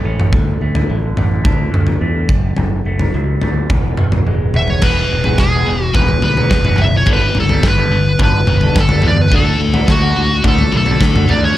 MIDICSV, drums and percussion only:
0, 0, Header, 1, 2, 480
1, 0, Start_track
1, 0, Tempo, 561798
1, 277, Time_signature, 4, 2, 24, 8
1, 9890, End_track
2, 0, Start_track
2, 0, Title_t, "Drums"
2, 167, Note_on_c, 9, 47, 75
2, 253, Note_off_c, 9, 47, 0
2, 279, Note_on_c, 9, 36, 95
2, 281, Note_on_c, 9, 43, 72
2, 364, Note_off_c, 9, 36, 0
2, 367, Note_off_c, 9, 43, 0
2, 642, Note_on_c, 9, 43, 91
2, 727, Note_off_c, 9, 43, 0
2, 1001, Note_on_c, 9, 43, 70
2, 1001, Note_on_c, 9, 47, 68
2, 1086, Note_off_c, 9, 43, 0
2, 1086, Note_off_c, 9, 47, 0
2, 1238, Note_on_c, 9, 36, 107
2, 1242, Note_on_c, 9, 43, 82
2, 1324, Note_off_c, 9, 36, 0
2, 1327, Note_off_c, 9, 43, 0
2, 1486, Note_on_c, 9, 47, 72
2, 1571, Note_off_c, 9, 47, 0
2, 1594, Note_on_c, 9, 43, 80
2, 1680, Note_off_c, 9, 43, 0
2, 1956, Note_on_c, 9, 36, 107
2, 2042, Note_off_c, 9, 36, 0
2, 2192, Note_on_c, 9, 43, 74
2, 2277, Note_off_c, 9, 43, 0
2, 2559, Note_on_c, 9, 43, 86
2, 2644, Note_off_c, 9, 43, 0
2, 2918, Note_on_c, 9, 43, 80
2, 3003, Note_off_c, 9, 43, 0
2, 3159, Note_on_c, 9, 43, 83
2, 3161, Note_on_c, 9, 36, 107
2, 3245, Note_off_c, 9, 43, 0
2, 3246, Note_off_c, 9, 36, 0
2, 3395, Note_on_c, 9, 47, 72
2, 3481, Note_off_c, 9, 47, 0
2, 3520, Note_on_c, 9, 43, 86
2, 3520, Note_on_c, 9, 47, 76
2, 3606, Note_off_c, 9, 43, 0
2, 3606, Note_off_c, 9, 47, 0
2, 3646, Note_on_c, 9, 48, 56
2, 3731, Note_off_c, 9, 48, 0
2, 3878, Note_on_c, 9, 45, 90
2, 3964, Note_off_c, 9, 45, 0
2, 3996, Note_on_c, 9, 43, 65
2, 4082, Note_off_c, 9, 43, 0
2, 4115, Note_on_c, 9, 43, 72
2, 4115, Note_on_c, 9, 49, 86
2, 4121, Note_on_c, 9, 36, 93
2, 4200, Note_off_c, 9, 43, 0
2, 4200, Note_off_c, 9, 49, 0
2, 4206, Note_off_c, 9, 36, 0
2, 4477, Note_on_c, 9, 43, 87
2, 4562, Note_off_c, 9, 43, 0
2, 4598, Note_on_c, 9, 38, 76
2, 4599, Note_on_c, 9, 36, 98
2, 4683, Note_off_c, 9, 38, 0
2, 4685, Note_off_c, 9, 36, 0
2, 5077, Note_on_c, 9, 43, 86
2, 5080, Note_on_c, 9, 36, 109
2, 5162, Note_off_c, 9, 43, 0
2, 5166, Note_off_c, 9, 36, 0
2, 5199, Note_on_c, 9, 43, 80
2, 5285, Note_off_c, 9, 43, 0
2, 5316, Note_on_c, 9, 43, 88
2, 5402, Note_off_c, 9, 43, 0
2, 5444, Note_on_c, 9, 43, 81
2, 5530, Note_off_c, 9, 43, 0
2, 5560, Note_on_c, 9, 36, 104
2, 5561, Note_on_c, 9, 38, 82
2, 5646, Note_off_c, 9, 36, 0
2, 5646, Note_off_c, 9, 38, 0
2, 5679, Note_on_c, 9, 43, 83
2, 5679, Note_on_c, 9, 47, 75
2, 5764, Note_off_c, 9, 43, 0
2, 5764, Note_off_c, 9, 47, 0
2, 5795, Note_on_c, 9, 43, 88
2, 5880, Note_off_c, 9, 43, 0
2, 6032, Note_on_c, 9, 43, 77
2, 6038, Note_on_c, 9, 36, 105
2, 6118, Note_off_c, 9, 43, 0
2, 6124, Note_off_c, 9, 36, 0
2, 6278, Note_on_c, 9, 43, 83
2, 6364, Note_off_c, 9, 43, 0
2, 6402, Note_on_c, 9, 43, 89
2, 6488, Note_off_c, 9, 43, 0
2, 6521, Note_on_c, 9, 36, 108
2, 6523, Note_on_c, 9, 38, 77
2, 6607, Note_off_c, 9, 36, 0
2, 6609, Note_off_c, 9, 38, 0
2, 6999, Note_on_c, 9, 43, 87
2, 7002, Note_on_c, 9, 36, 110
2, 7084, Note_off_c, 9, 43, 0
2, 7087, Note_off_c, 9, 36, 0
2, 7238, Note_on_c, 9, 43, 82
2, 7238, Note_on_c, 9, 47, 74
2, 7324, Note_off_c, 9, 43, 0
2, 7324, Note_off_c, 9, 47, 0
2, 7357, Note_on_c, 9, 43, 89
2, 7442, Note_off_c, 9, 43, 0
2, 7483, Note_on_c, 9, 36, 109
2, 7488, Note_on_c, 9, 38, 77
2, 7568, Note_off_c, 9, 36, 0
2, 7574, Note_off_c, 9, 38, 0
2, 7594, Note_on_c, 9, 43, 87
2, 7594, Note_on_c, 9, 47, 83
2, 7680, Note_off_c, 9, 43, 0
2, 7680, Note_off_c, 9, 47, 0
2, 7705, Note_on_c, 9, 43, 90
2, 7705, Note_on_c, 9, 47, 78
2, 7791, Note_off_c, 9, 43, 0
2, 7791, Note_off_c, 9, 47, 0
2, 7831, Note_on_c, 9, 47, 71
2, 7916, Note_off_c, 9, 47, 0
2, 7948, Note_on_c, 9, 43, 71
2, 7960, Note_on_c, 9, 36, 95
2, 8034, Note_off_c, 9, 43, 0
2, 8045, Note_off_c, 9, 36, 0
2, 8319, Note_on_c, 9, 43, 90
2, 8405, Note_off_c, 9, 43, 0
2, 8442, Note_on_c, 9, 36, 105
2, 8443, Note_on_c, 9, 38, 78
2, 8528, Note_off_c, 9, 36, 0
2, 8528, Note_off_c, 9, 38, 0
2, 8920, Note_on_c, 9, 43, 94
2, 8922, Note_on_c, 9, 36, 106
2, 9005, Note_off_c, 9, 43, 0
2, 9008, Note_off_c, 9, 36, 0
2, 9044, Note_on_c, 9, 43, 83
2, 9129, Note_off_c, 9, 43, 0
2, 9163, Note_on_c, 9, 43, 87
2, 9248, Note_off_c, 9, 43, 0
2, 9279, Note_on_c, 9, 43, 80
2, 9365, Note_off_c, 9, 43, 0
2, 9403, Note_on_c, 9, 36, 107
2, 9411, Note_on_c, 9, 38, 80
2, 9489, Note_off_c, 9, 36, 0
2, 9496, Note_off_c, 9, 38, 0
2, 9532, Note_on_c, 9, 43, 78
2, 9532, Note_on_c, 9, 47, 80
2, 9618, Note_off_c, 9, 43, 0
2, 9618, Note_off_c, 9, 47, 0
2, 9646, Note_on_c, 9, 43, 94
2, 9731, Note_off_c, 9, 43, 0
2, 9890, End_track
0, 0, End_of_file